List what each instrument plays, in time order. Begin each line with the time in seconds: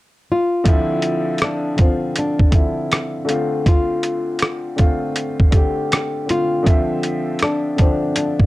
0.32 nylon-string guitar F4
0.64 upright piano D3 F3 C4, kick, closed hi-hat
0.68 upright piano E4
1.02 closed hi-hat
1.38 cross-stick, closed hi-hat
1.44 nylon-string guitar D4
1.76 upright piano D3 F3 C4 F4, kick, closed hi-hat
1.81 nylon-string guitar C4
2.16 nylon-string guitar D4, closed hi-hat
2.39 kick
2.51 upright piano D3 F3 C4 E4, kick, closed hi-hat
2.92 cross-stick, closed hi-hat
3.25 upright piano D3 A3 C4, closed hi-hat
3.29 upright piano F4
3.66 nylon-string guitar F4, kick, closed hi-hat
4.03 closed hi-hat
4.39 cross-stick, closed hi-hat
4.76 upright piano D3 A3 C4 F4, kick, closed hi-hat
5.16 closed hi-hat
5.40 kick
5.50 upright piano D3 A3 C4, kick, closed hi-hat
5.55 upright piano G4
5.92 cross-stick, closed hi-hat
6.26 upright piano D3 A3 C4, closed hi-hat
6.30 upright piano F4, nylon-string guitar F4
6.63 upright piano D3 F3 C4 E5, kick
6.67 closed hi-hat
7.03 closed hi-hat
7.39 cross-stick, closed hi-hat
7.44 nylon-string guitar D4
7.76 upright piano D3 F3 C4, kick, closed hi-hat
7.81 nylon-string guitar C4, upright piano D4
8.16 nylon-string guitar D4, closed hi-hat
8.40 kick